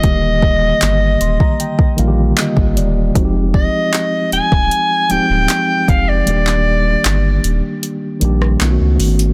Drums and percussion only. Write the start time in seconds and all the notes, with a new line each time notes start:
0.03 kick, closed hi-hat
0.42 kick
0.82 clap, closed hi-hat
1.21 closed hi-hat
1.40 kick
1.60 closed hi-hat
1.79 kick
1.98 closed hi-hat
2.38 clap, closed hi-hat
2.57 kick
2.77 closed hi-hat
3.15 kick, closed hi-hat
3.54 kick
3.94 clap, closed hi-hat
4.32 closed hi-hat
4.52 kick
4.71 closed hi-hat
5.10 closed hi-hat
5.49 clap, closed hi-hat
5.88 kick, closed hi-hat
6.27 closed hi-hat
6.47 clap
7.05 clap, closed hi-hat
7.44 closed hi-hat
7.83 closed hi-hat
8.21 closed hi-hat
8.42 cross-stick
8.61 clap, closed hi-hat
9.00 closed hi-hat, open hi-hat
9.19 closed hi-hat